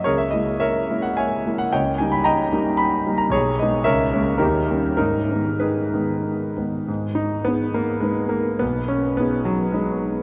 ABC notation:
X:1
M:3/4
L:1/16
Q:1/4=106
K:G#m
V:1 name="Grand piano"
[GAc] e d2 [Ace]3 f [ceg]3 f | [cd=g]2 ^g b [d=ga]4 b3 a | [Gc]2 d2 [Ace]4 [D=GA]4 | [DA]4 [DGB]6 z2 |
z2 D2 B,2 A,2 G,2 A,2 | B,2 C2 B,2 F,2 G,4 |]
V:2 name="Grand piano"
C,,2 [G,A,E]4 [G,A,E]4 [G,A,E]2 | C,,2 [=G,A,D]4 [G,A,D]4 [G,A,D]2 | B,,,2 [G,B,D]2 C,,2 [G,A,C]2 D,,2 [=G,A,C]2 | G,,2 [D,G,B,]4 [D,G,B,]4 [D,G,B,]2 |
G,,4 [DGB]4 [DGB]4 | B,,,4 [DGB]4 [DGB]4 |]